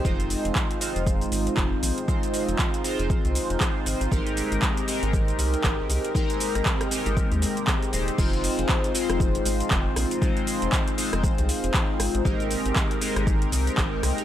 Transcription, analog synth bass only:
X:1
M:4/4
L:1/16
Q:"Swing 16ths" 1/4=118
K:Fm
V:1 name="Analog synth bass" clef=bass
F,,,2 z F,,, z3 F,,,2 z A,,, z F,,, z B,,, z | z3 F,,, z3 F,,, z C,, z F,,, z2 A,,, A,,, | A,,,2 z A,,, z3 A,,,2 z C,, z A,,, z C,, z | z3 A,,, z3 A,,, z E,, z4 E,,, z |
F,,,2 z F,,, z3 F,,,2 z A,,, z F,,, z B,,, z | z3 F,,, z3 F,,, z C,, z F,,, z2 A,,, A,,, | A,,,2 z A,,, z3 A,,,2 z C,, z A,,, z C,, z |]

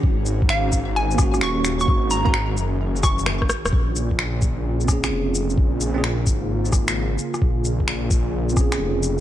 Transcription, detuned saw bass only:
X:1
M:4/4
L:1/16
Q:"Swing 16ths" 1/4=130
K:Bbm
V:1 name="Detuned saw bass" clef=bass
A,,,12 E,,,4 | A,,,4 A,,,2 G,,,8 z E,,, | B,,,12 F,,,4 | B,,,4 B,,,2 A,,,8 z2 |
B,,,12 F,,,4 |]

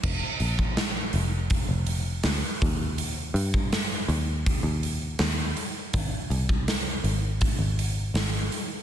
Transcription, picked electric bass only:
X:1
M:4/4
L:1/16
Q:1/4=81
K:Fdor
V:1 name="Picked electric bass" clef=bass
F,,, z B,,,4 F,,,3 F,,,3 D,, z E,,2- | E,,2 G,,4 E,,3 E,,3 E,,2 z2 | A,,, z C,,4 A,,,3 A,,,3 A,,,2 z2 |]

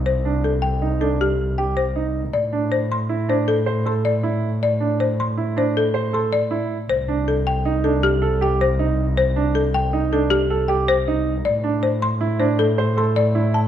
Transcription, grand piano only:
X:1
M:6/4
L:1/8
Q:1/4=158
K:Am
V:1 name="Grand piano"
z D z2 _E D z2 G z E z | z D z2 E D z c A z E z | z D z2 E D z c A z E z | z D z2 _E D z A G z E z |
z D z2 _E D z A G z E z | z D z2 E D z c A z E z |]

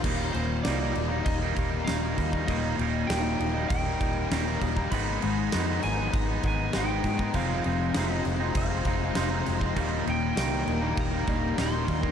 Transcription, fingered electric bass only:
X:1
M:4/4
L:1/8
Q:1/4=99
K:Eb
V:1 name="Fingered electric bass" clef=bass
E,,, E,,, C,, E,,, E,,, E,,, E,,, E,, | E,,, E,,, E,,, E,,, E,,, E,,, E,,, E,,, | A,,, A,,, F,, A,,, A,,, A,,, A,,, A,, | F,,, F,,, F,,, F,,, F,,, F,,, F,,, F,,, |
E,,, E,,, C,, E,,, E,,, E,,, E,,, E,, |]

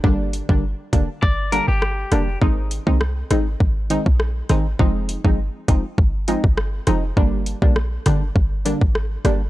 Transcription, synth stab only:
X:1
M:4/4
L:1/16
Q:1/4=101
K:Gphr
V:1 name="Synth stab"
[D,G,B,D]3 [D,G,B,D] z2 [D,G,B,D] z3 [D,G,B,D] z3 [D,G,B,D] z | [E,A,CE]3 [E,A,CE] z2 [E,A,CE] z3 [E,A,CE] z3 [E,A,CE] z | [F,A,CE]3 [F,A,CE] z2 [F,A,CE] z3 [F,A,CE] z3 [F,A,CE] z | [D,G,B,D]3 [D,G,B,D] z2 [D,G,B,D] z3 [D,G,B,D] z3 [D,G,B,D] z |]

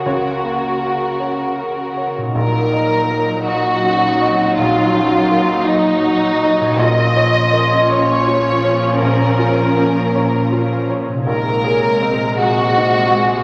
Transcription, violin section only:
X:1
M:6/8
L:1/8
Q:3/8=54
K:Ebdor
V:1 name="Violin section"
[GB]4- [GB] z | B3 G3 | F3 E3 | e3 d3 |
B4- B z | B3 G3 |]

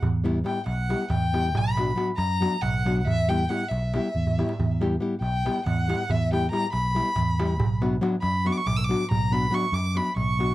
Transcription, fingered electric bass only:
X:1
M:7/8
L:1/8
Q:1/4=139
K:none
V:1 name="Fingered electric bass" clef=bass
E,,3 B,,,2 E,,2 | B,,,3 ^F,,2 B,,,2 | E,,3 B,,,2 E,,2 | E,,3 B,,,2 E,,2 |
E,,3 B,,,2 E,,2 | B,,,3 ^F,,2 B,,,2 | B,,,3 ^F,,2 B,,,2 |]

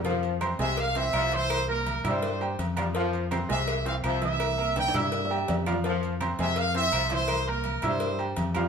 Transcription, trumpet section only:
X:1
M:4/4
L:1/8
Q:1/4=166
K:Fm
V:1 name="Trumpet section"
z3 =e f e2 c- | c B2 c3 z2 | z3 =e2 f e e- | =e2 g e4 z |
z3 =e f e2 c- | c B2 c3 z2 |]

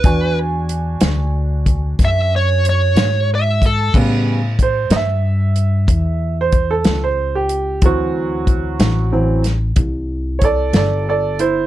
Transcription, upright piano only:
X:1
M:12/8
L:1/16
Q:3/8=62
K:Edor
V:1 name="Upright piano"
[DF^g]24 | [C,G,B,]2 z2 =c2 [^de]8- [de] c2 A2 c2 G3 | [E,F,=CF]8 [E,F,C]2 z6 [A^cd]2 [Ad]2 [Ad]2 [E=c]2 |]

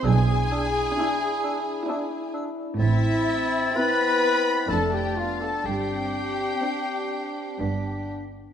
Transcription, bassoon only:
X:1
M:3/4
L:1/8
Q:1/4=63
K:Gmix
V:1 name="Bassoon"
D D D D D D | C4 D2 | D4 D z |]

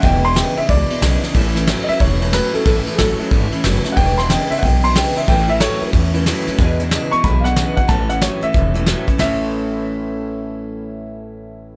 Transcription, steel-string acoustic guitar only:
X:1
M:4/4
L:1/8
Q:"Swing" 1/4=183
K:A
V:1 name="Steel-string acoustic guitar"
[E,,B,,E,G,DE] [E,G,DE] [E,,B,,E,G,DE] [E,G,DE] [E,G,DE] [E,G,DE] [E,,B,,E,G,DE] [E,G,DE] | [A,,E,A,CE] [A,CE] [A,,E,A,CE] [A,CE] [E,A,CE] [A,CE] [A,,E,A,CE] [A,CE] | [A,,E,A,CE] [A,CE] [A,,E,A,CE] [A,CE] [E,A,CE] [A,CE] [A,,E,A,CE] [A,CE] | [E,,B,,E,G,DE] [E,G,DE] [E,,B,,E,G,DE] [E,G,DE] [E,G,DE] [E,G,DE] [E,,B,,E,G,DE] [E,G,DE] |
[A,,E,A,CE] [A,CE] [A,,E,A,CE] [A,CE] [E,A,CE] [A,CE] [A,,E,A,CE] [A,CE] | [E,,B,,E,G,DE] [E,G,DE] [E,,B,,E,G,DE] [E,G,DE] [E,G,DE] [E,G,DE] [E,,B,,E,G,DE] [G,DE] | [A,,E,A,CE] [A,CE] [A,,E,A,CE] [A,CE] [E,A,CE] [A,CE] [A,,E,A,CE] [A,CE] | [A,,E,A,CE]8- |
[A,,E,A,CE]8 |]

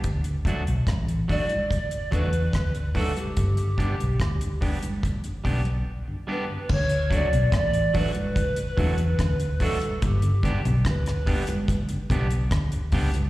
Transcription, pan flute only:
X:1
M:4/4
L:1/16
Q:1/4=72
K:D
V:1 name="Pan flute"
z6 d4 B4 A G- | G6- G z6 z B2 | c2 d2 d2 B8 A2 | G3 z B4 z8 |]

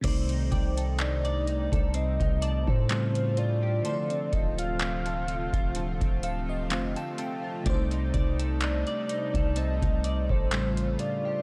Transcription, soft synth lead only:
X:1
M:4/4
L:1/16
Q:"Swing 16ths" 1/4=63
K:Cdor
V:1 name="Soft synth lead"
z4 d4 e3 c3 d2- | d2 e f8 z4 z | z4 d4 e3 c3 d2 |]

